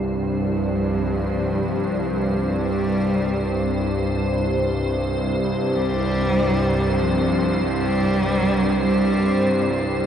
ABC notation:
X:1
M:4/4
L:1/16
Q:1/4=48
K:none
V:1 name="Ambient pad"
c16- | c16 |]
V:2 name="Cello" clef=bass
F,8 G,4 z4 | z2 G,4 F,2 G,4 G,3 z |]
V:3 name="Synth drone" clef=bass
[C,,G,,]16- | [C,,G,,]16 |]